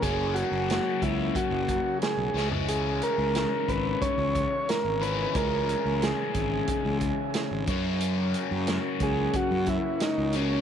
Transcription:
Already playing: tonewheel organ A#4 C#5 C#6
0.02 fingered electric bass F#1, overdriven electric guitar F#2 C#3 F#3 A#3 C#4, transistor combo organ G#4, tonewheel organ G#5, kick, closed hi-hat
0.34 transistor combo organ F#4, closed hi-hat
0.51 fingered electric bass F#1
0.70 snare, closed hi-hat
1.02 fingered electric bass C#2, transistor combo organ E4, kick, closed hi-hat
1.35 transistor combo organ F#4, kick, closed hi-hat
1.50 fingered electric bass F#1
1.68 kick, closed hi-hat
2.02 transistor combo organ G#4, snare, closed hi-hat
2.17 fingered electric bass B1
2.34 fingered electric bass C#2, overdriven electric guitar C#3 E3 G#3 C#4, tonewheel organ G#4 E5, snare
2.52 floor tom
2.68 transistor combo organ G#4, closed hi-hat
3.02 transistor combo organ A#4, closed hi-hat
3.18 fingered electric bass C#2
3.35 snare, closed hi-hat
3.68 fingered electric bass G#1, transistor combo organ B4, kick, closed hi-hat
4.01 transistor combo organ C#5, kick, closed hi-hat
4.18 fingered electric bass C#2
4.35 kick, closed hi-hat
4.69 transistor combo organ A#4, snare, closed hi-hat
4.84 fingered electric bass G#1
5.00 overdriven electric guitar C#3 E3 G#3 C#4, transistor combo organ B4, tonewheel organ G#5, closed hi-hat
5.35 fingered electric bass C#2, transistor combo organ A#4, kick, closed hi-hat
5.69 closed hi-hat
5.85 fingered electric bass C#2
6.02 transistor combo organ G#4, snare, closed hi-hat
6.34 fingered electric bass G#1, kick, closed hi-hat
6.68 kick, closed hi-hat
6.85 fingered electric bass C#2
7.01 kick, closed hi-hat
7.34 snare, closed hi-hat
7.51 fingered electric bass G#1
7.67 overdriven electric guitar F#2 C#3 F#3 A#3 C#4, fingered electric bass F#2, tonewheel organ A#4 F#5 C#6, kick, closed hi-hat
8.01 closed hi-hat
8.34 closed hi-hat
8.51 fingered electric bass F#2
8.67 snare, closed hi-hat
9.00 fingered electric bass C#2, transistor combo organ G#4, kick, closed hi-hat
9.33 transistor combo organ F#4, kick, closed hi-hat
9.51 fingered electric bass F#2
9.66 transistor combo organ E4, kick, closed hi-hat
10.00 transistor combo organ D#4, snare, closed hi-hat
10.18 fingered electric bass C#2
10.32 overdriven electric guitar F#2 C#3 F#3 A#3 C#4, transistor combo organ C#4, tonewheel organ G#5, closed hi-hat

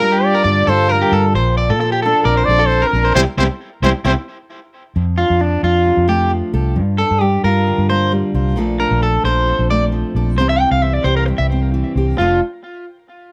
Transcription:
Already playing: steel-string acoustic guitar G2 A#3 D4 F4, fingered electric bass G3, trumpet A#4
0.00 steel-string acoustic guitar G3, clean electric guitar A#4
0.12 clean electric guitar G4
0.25 trumpet D5
0.35 clean electric guitar A#4
0.44 fingered electric bass G2, steel-string acoustic guitar D3, clean electric guitar D5
0.67 fingered electric bass G2, steel-string acoustic guitar F4, clean electric guitar A4, trumpet C5
0.89 steel-string acoustic guitar G3, clean electric guitar A#4, trumpet A#4
1.02 clean electric guitar G4
1.12 fingered electric bass G2, steel-string acoustic guitar D4, clean electric guitar A4
1.34 fingered electric bass A#1, steel-string acoustic guitar A#2, clean electric guitar C5
1.58 clean electric guitar D5
1.70 fingered electric bass A#2, clean electric guitar A4
1.80 steel-string acoustic guitar F3, clean electric guitar A4
1.92 clean electric guitar G4
2.02 steel-string acoustic guitar D4, clean electric guitar A4, trumpet A4
2.23 fingered electric bass A#1, steel-string acoustic guitar F2, trumpet A#4, clean electric guitar D5
2.37 clean electric guitar C5
2.45 fingered electric bass A#1, trumpet D5
2.50 steel-string acoustic guitar A4
2.59 clean electric guitar A4
2.66 trumpet C5
2.71 steel-string acoustic guitar F3
2.82 clean electric guitar A#4
2.87 trumpet A#4
2.93 fingered electric bass A#1, steel-string acoustic guitar D4
3.05 clean electric guitar C5
3.15 fingered electric bass C2, steel-string acoustic guitar E3 G3 C4, clean electric guitar E4 G4 C5, trumpet C5
3.38 fingered electric bass C2, steel-string acoustic guitar E3 G3 C4, clean electric guitar E4 G4 C5, trumpet C5
3.82 fingered electric bass C2, steel-string acoustic guitar E3 G3 C4, clean electric guitar E4 G4 C5, trumpet C5
4.05 fingered electric bass C2, steel-string acoustic guitar E3 G3 C4, clean electric guitar E4 G4 C5, trumpet C5
4.96 steel-string acoustic guitar F2, fingered electric bass F2
5.18 steel-string acoustic guitar D4, clean electric guitar F4
5.30 fingered electric bass F2
5.39 steel-string acoustic guitar F3, clean electric guitar D4
5.63 fingered electric bass F2, steel-string acoustic guitar D4, clean electric guitar F4
5.85 steel-string acoustic guitar C3
5.97 fingered electric bass F2
6.08 steel-string acoustic guitar A3, clean electric guitar G4
6.30 steel-string acoustic guitar F3
6.54 fingered electric bass C2, steel-string acoustic guitar A4
6.76 steel-string acoustic guitar G2, fingered electric bass G2
6.98 steel-string acoustic guitar D4, clean electric guitar A4
7.11 fingered electric bass G2
7.21 steel-string acoustic guitar G3, clean electric guitar G4
7.44 fingered electric bass G2, steel-string acoustic guitar F4, clean electric guitar A#4
7.67 steel-string acoustic guitar D3
7.78 fingered electric bass G2
7.90 steel-string acoustic guitar A#3, clean electric guitar C5
8.12 steel-string acoustic guitar G3
8.34 fingered electric bass C2, steel-string acoustic guitar F4
8.56 fingered electric bass A#1, steel-string acoustic guitar A#2 F3 A3 D4 A4
8.80 steel-string acoustic guitar D4, clean electric guitar A#4
8.91 fingered electric bass A#1
9.02 steel-string acoustic guitar F3, clean electric guitar A4
9.24 fingered electric bass A#1, steel-string acoustic guitar A4, clean electric guitar C5
9.47 steel-string acoustic guitar F2
9.59 fingered electric bass A#1
9.71 steel-string acoustic guitar A3, clean electric guitar D5
9.92 steel-string acoustic guitar F3
10.15 fingered electric bass A#1, steel-string acoustic guitar A4
10.37 fingered electric bass C2, steel-string acoustic guitar C3 E3 C4 E4, clean electric guitar C5
10.41 steel-string acoustic guitar G4
10.49 clean electric guitar E5
10.60 steel-string acoustic guitar E4, clean electric guitar G5
10.71 fingered electric bass C2, clean electric guitar F5
10.82 steel-string acoustic guitar E3, clean electric guitar E5
10.93 clean electric guitar D5
11.04 fingered electric bass C2, steel-string acoustic guitar G4, clean electric guitar C5
11.17 clean electric guitar A#4
11.26 steel-string acoustic guitar G2, muted clean electric guitar stroke
11.38 fingered electric bass C2, clean electric guitar E5
11.52 steel-string acoustic guitar C4
11.74 steel-string acoustic guitar E3
11.95 fingered electric bass C2, steel-string acoustic guitar G4
12.18 fingered electric bass F1, steel-string acoustic guitar F2 F3 A3 D4, clean electric guitar F4
12.22 steel-string acoustic guitar A4

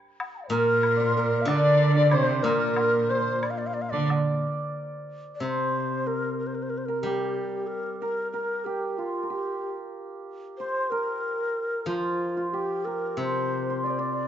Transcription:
0.20 high woodblock, low woodblock
0.34 dizi A#5
0.38 dizi F5 G5
0.44 dizi C5 D5
0.50 guzheng A#2, cello A#2, dizi A#4, hammered dulcimer A#4, xiao A#4
0.83 high woodblock
0.96 hammered dulcimer C5 D5
1.16 xiao A#4, hammered dulcimer A#4
1.41 dizi F5
1.45 guzheng D3, cello D3, dizi D5, xiao D5, hammered dulcimer D5, low woodblock
1.95 dizi D5, hammered dulcimer D5
2.11 cello C3, xiao C5, hammered dulcimer C5, dizi C5, high woodblock
2.43 guzheng A#2, cello A#2, xiao A#4, dizi A#4, hammered dulcimer A#4
2.76 high woodblock, low woodblock
3.10 xiao C5, dizi C5, hammered dulcimer C5
3.42 xiao D5, high woodblock
3.50 xiao F5
3.58 xiao D5
3.67 xiao F5
3.74 xiao D5
3.82 xiao F5
3.90 cello D3, xiao D5, dizi D5, hammered dulcimer D5
4.10 low woodblock
5.35 xiao D5
5.40 guzheng C3, xiao C5, hammered dulcimer C5
6.06 hammered dulcimer A#4, xiao A#4
6.39 xiao A#4
6.47 xiao C5
6.55 xiao A#4
6.63 xiao C5
6.70 xiao A#4
6.78 xiao C5
6.85 xiao A#4, hammered dulcimer A#4
7.01 guzheng G3, xiao G4
7.06 hammered dulcimer G4
7.67 xiao A#4
8.00 xiao A#4, hammered dulcimer A#4
8.32 xiao A#4, hammered dulcimer A#4
8.65 xiao G4, hammered dulcimer G4
8.90 xiao G4
8.97 xiao F4, hammered dulcimer F4
9.23 hammered dulcimer A#4
9.30 hammered dulcimer G4, xiao G4
10.58 xiao C5, hammered dulcimer C5
10.90 xiao A#4, hammered dulcimer A#4
11.86 guzheng F3, xiao F4, hammered dulcimer F4
12.37 hammered dulcimer F4
12.51 xiao G4, hammered dulcimer G4
12.85 xiao A#4, hammered dulcimer A#4
13.17 guzheng C3, xiao C5, hammered dulcimer C5
13.70 hammered dulcimer C5
13.84 xiao D5, hammered dulcimer D5
13.90 xiao C5
13.99 hammered dulcimer D5, xiao D5

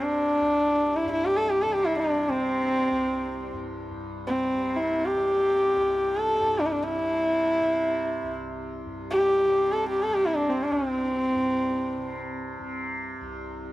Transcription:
Already playing: tanpura C2 G2 C3
0.02 sarangi D4
0.40 tanpura C2
0.96 sarangi E4
1.04 tanpura G2
1.11 sarangi E4
1.25 sarangi G4
1.37 sarangi A4
1.50 sarangi G4
1.61 sarangi A4
1.66 tanpura C3
1.73 sarangi G4
1.85 sarangi E4
1.99 sarangi D4
2.29 tanpura C3, sarangi C4
2.91 tanpura C2
3.53 tanpura G2
3.90 tanpura G2
4.27 sarangi C4
4.53 tanpura C3
4.76 sarangi E4
5.06 sarangi G4
5.15 tanpura C3
5.76 tanpura C2
6.17 sarangi A4
6.40 tanpura G2
6.59 sarangi D4
6.66 sarangi E4
6.72 sarangi D4
6.83 sarangi E4
6.99 tanpura C3
7.61 tanpura C3
8.23 tanpura C2
8.86 tanpura G2
9.11 sarangi G4
9.47 tanpura C3
9.72 sarangi A4
9.89 sarangi G4
10.03 sarangi A4
10.08 tanpura C3
10.14 sarangi G4
10.25 sarangi E4
10.36 sarangi D4
10.49 sarangi C4
10.63 sarangi D4
10.71 tanpura C2, sarangi C4
11.34 tanpura G2
11.97 tanpura C3
12.59 tanpura C3
13.21 tanpura C2

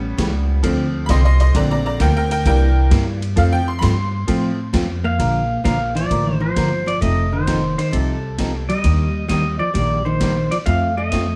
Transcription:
Already playing: upright bass A1, honky-tonk piano G3 B3 C#4
0.18 upright bass C#2, hollow-body jazz guitar C#3 E3 A3 C#4 G4, kick, snare, hi-hat pedal, ride
0.63 upright bass D2, hollow-body jazz guitar D3 F3 C4 D4 A4, honky-tonk piano F3 A3 C4, kick, ride
1.06 upright bass C2, hollow-body jazz guitar D3 F3, honky-tonk piano D#5 B5, kick, snare, hi-hat pedal, ride
1.10 hollow-body jazz guitar C4 D4 A4, honky-tonk piano C6
1.25 honky-tonk piano D#5 C6
1.40 honky-tonk piano D#5 C6, ride
1.54 upright bass A#1, hollow-body jazz guitar D3 F3 A#3 D4 A4, honky-tonk piano D3 A3 C4 D5 A#5, kick, ride
1.71 honky-tonk piano D5 A#5
1.86 honky-tonk piano D5 A#5
2.00 upright bass D2, hollow-body jazz guitar D3 F3 A#3 D4 A4, honky-tonk piano A#4 G5, kick, snare, hi-hat pedal, ride
2.16 honky-tonk piano A#4 G5
2.31 honky-tonk piano A#4 G5, ride
2.45 upright bass C2, hollow-body jazz guitar C3 G3 A#3 E4 G4, honky-tonk piano E3 A#3 D4 A#4 G5, kick, ride
2.90 upright bass G2, hollow-body jazz guitar C3 G3 A#3 E4 G4, kick, snare, hi-hat pedal, ride
3.22 ride
3.36 upright bass F2, hollow-body jazz guitar F3 A3 C4 F4 A4, honky-tonk piano F3 A3 C4 F5, kick, ride
3.52 honky-tonk piano G5
3.68 honky-tonk piano C6
3.79 upright bass G2, hollow-body jazz guitar F3 A3 C4 F4, honky-tonk piano B5, kick, snare, hi-hat pedal, ride
3.83 hollow-body jazz guitar A4, honky-tonk piano C6
4.27 upright bass A2, hollow-body jazz guitar F3 A3 C4 F4 A4, honky-tonk piano F3 A3 C4, kick, ride
4.73 upright bass F2, hollow-body jazz guitar F3 A3 C4 F4 A4, kick, snare, hi-hat pedal, ride
5.04 hollow-body jazz guitar A#3, pedal steel guitar F5
5.19 upright bass A#1, hollow-body jazz guitar D3 F3 A#3 D4 A#4, kick, ride
5.64 upright bass A#1, hollow-body jazz guitar D3 F3 A#3 D4 A#4, pedal steel guitar F5, kick, snare, hi-hat pedal, ride
5.95 hollow-body jazz guitar F3, pedal steel guitar D5, ride
6.10 upright bass A1, hollow-body jazz guitar D3 F3 A#3 D4 A#4, kick, ride
6.40 hollow-body jazz guitar F3, pedal steel guitar C5
6.56 upright bass G1, hollow-body jazz guitar D3 F3 A#3 D4 A#4, kick, snare, hi-hat pedal, ride
6.86 hollow-body jazz guitar F3, pedal steel guitar D5, ride
7.01 upright bass F1, hollow-body jazz guitar F3 A3 C4 D#4 A4, pedal steel guitar D#5, kick, ride
7.32 hollow-body jazz guitar D#3, pedal steel guitar C5
7.47 hollow-body jazz guitar F3 C4 D#4 A4, kick, snare, hi-hat pedal, ride
7.78 hollow-body jazz guitar D#3, pedal steel guitar C5, ride
7.92 upright bass C2, hollow-body jazz guitar C3 F3 C4 D#4 A4, pedal steel guitar A4, kick, ride
8.38 hollow-body jazz guitar F3 C4 D#4 A4, kick, snare, hi-hat pedal, ride
8.69 hollow-body jazz guitar G3, pedal steel guitar D#5, ride
8.84 upright bass D#2, hollow-body jazz guitar D#3 G3 A#3 D4 G4, kick, ride
9.28 hollow-body jazz guitar D#3 G3 A#3 D4 G4, pedal steel guitar D#5, kick, snare, hi-hat pedal, ride
9.59 hollow-body jazz guitar F3, pedal steel guitar D5
9.74 upright bass A#1, hollow-body jazz guitar D#3 G3 A#3 D4 G4, pedal steel guitar D5, kick, ride
10.05 hollow-body jazz guitar D#3, pedal steel guitar C5
10.20 hollow-body jazz guitar D#3 G3 A#3 D4 G4, kick, snare, hi-hat pedal, ride
10.51 hollow-body jazz guitar F3, pedal steel guitar D5, ride
10.66 upright bass F2, hollow-body jazz guitar F3 A3 C4 F4 A4, pedal steel guitar F5, kick, ride
10.97 hollow-body jazz guitar A3, pedal steel guitar D#5
11.12 hollow-body jazz guitar F3 A3 C4 F4 A4, kick, snare, hi-hat pedal, ride

